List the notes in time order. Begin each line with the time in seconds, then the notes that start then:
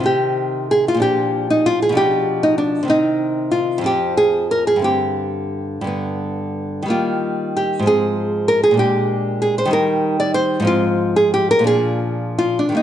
Already playing: C3
0.00 D#3 C4
0.06 G4
0.71 G#4
0.88 F4
0.94 A#2 F3
1.00 D4 G4
1.50 D#4
1.66 F4
1.82 G#4
1.89 B2 F3
1.95 D4 G4
2.43 D#4
2.58 D4
2.83 C3 D#3
2.88 C4 D#4
3.51 F4
3.78 F2 F3
3.84 C4 G4
4.17 G#4
4.51 A#4
4.67 G#4
4.76 G2 D3
4.82 C4 G4
5.81 G2 D3
5.87 B3
6.82 D#3 G3
6.88 A#3 F4
7.57 G4
7.79 G#2 F3
7.86 C4 G#4
8.48 A#4
8.63 G#4
8.71 A#2 G#3
8.77 D4 G4
9.42 G#4
9.58 C5
9.65 D#3 G3
9.71 D#4 A#4
10.20 D5
10.34 C5
10.60 G#2 F3
10.65 C4 F4
11.16 G#4
11.34 G4
11.51 A#4
11.59 A#2 F3
11.64 D4 G#4
12.39 F4
12.59 D4
12.69 D#3 G3
12.75 A#3 D#4